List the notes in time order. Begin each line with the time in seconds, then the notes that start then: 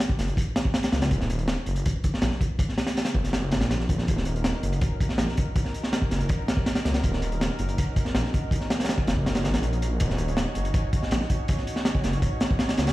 0.00 closed hi-hat
0.09 kick
0.19 F#1, snare, closed hi-hat
0.28 closed hi-hat
0.37 kick, closed hi-hat
0.56 snare, closed hi-hat
0.65 kick
0.74 snare, closed hi-hat
0.83 snare, closed hi-hat
0.92 C#2, snare, closed hi-hat
1.02 snare, closed hi-hat
1.11 D#1, kick, closed hi-hat
1.21 snare
1.30 closed hi-hat
1.39 closed hi-hat
1.48 snare, closed hi-hat
1.66 F#1, closed hi-hat
1.76 closed hi-hat
1.86 kick, closed hi-hat
2.04 kick, closed hi-hat
2.14 snare
2.22 A#1, snare, closed hi-hat
2.31 snare
2.41 kick, closed hi-hat
2.59 kick, closed hi-hat
2.69 snare
2.78 snare, closed hi-hat
2.87 snare, closed hi-hat
2.97 snare, closed hi-hat
3.05 snare, closed hi-hat
3.14 F#1, kick
3.24 snare, closed hi-hat
3.33 snare, closed hi-hat
3.51 G#1, snare, closed hi-hat
3.61 A#1, snare, closed hi-hat
3.71 snare, closed hi-hat
3.80 snare
3.89 kick, closed hi-hat
3.98 snare
4.07 D#1 C#4 D#4 F#4 A#4, kick, closed hi-hat
4.17 snare
4.25 closed hi-hat
4.36 closed hi-hat
4.44 snare, closed hi-hat
4.63 F#1, closed hi-hat
4.73 closed hi-hat
4.81 kick, closed hi-hat
5.00 kick, closed hi-hat
5.09 snare
5.18 A#1, snare, closed hi-hat
5.28 snare
5.37 kick, closed hi-hat
5.56 kick, closed hi-hat
5.65 snare
5.74 closed hi-hat
5.83 snare
5.93 snare, closed hi-hat
6.02 kick
6.11 F#1, snare, closed hi-hat
6.20 closed hi-hat
6.29 kick, closed hi-hat
6.48 snare, closed hi-hat
6.57 kick
6.66 snare, closed hi-hat
6.75 snare, closed hi-hat
6.85 C#2, snare, closed hi-hat
6.94 snare, closed hi-hat
7.03 D#1, kick, closed hi-hat
7.13 snare
7.22 closed hi-hat
7.32 closed hi-hat
7.41 snare, closed hi-hat
7.59 F#1, closed hi-hat
7.69 closed hi-hat
7.78 kick, closed hi-hat
7.96 kick, closed hi-hat
8.05 snare
8.15 A#1, snare, closed hi-hat
8.24 snare
8.34 kick, closed hi-hat
8.51 kick, closed hi-hat
8.61 snare
8.70 snare, closed hi-hat
8.80 snare, closed hi-hat
8.84 snare, closed hi-hat
8.89 snare, closed hi-hat
8.98 kick
9.07 F#1, snare, closed hi-hat
9.17 kick
9.26 snare, closed hi-hat
9.35 snare, closed hi-hat
9.44 G#1, snare, closed hi-hat
9.54 A#1, snare, closed hi-hat
9.63 closed hi-hat
9.73 closed hi-hat
9.82 closed hi-hat
10.00 D#1 C#5, kick, closed hi-hat
10.10 snare
10.18 closed hi-hat
10.28 closed hi-hat
10.37 snare, closed hi-hat
10.55 F#1, closed hi-hat
10.65 closed hi-hat
10.74 kick, closed hi-hat
10.93 kick, closed hi-hat
11.03 snare
11.11 A#1, snare, closed hi-hat
11.21 snare
11.30 kick, closed hi-hat
11.48 kick, closed hi-hat
11.58 snare
11.67 closed hi-hat
11.76 snare
11.85 snare, closed hi-hat
11.95 kick
12.04 F#1, snare, closed hi-hat
12.13 closed hi-hat
12.22 kick, closed hi-hat
12.40 snare, closed hi-hat
12.51 kick
12.59 snare, closed hi-hat
12.69 snare, closed hi-hat
12.77 C#2, snare, closed hi-hat
12.87 snare, closed hi-hat